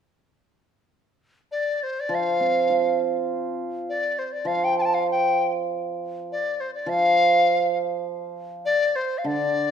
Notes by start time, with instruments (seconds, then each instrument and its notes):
1.52 dizi D5
1.83 dizi C5
2.00 dizi D5
2.09 hammered dulcimer F3
2.15 dizi F5
2.40 hammered dulcimer C4
2.70 hammered dulcimer F4
3.89 dizi D5
4.19 dizi C5
4.33 dizi D5
4.45 hammered dulcimer F3, dizi F5
4.64 dizi G5
4.79 dizi G5 A5
4.85 dizi A5
4.94 dizi F5
5.11 dizi G5
6.32 dizi D5
6.60 dizi C5
6.74 dizi D5
6.86 hammered dulcimer F3, dizi F5
8.65 dizi D5
8.96 dizi C5
9.18 dizi F5
9.24 hammered dulcimer D3, dizi D5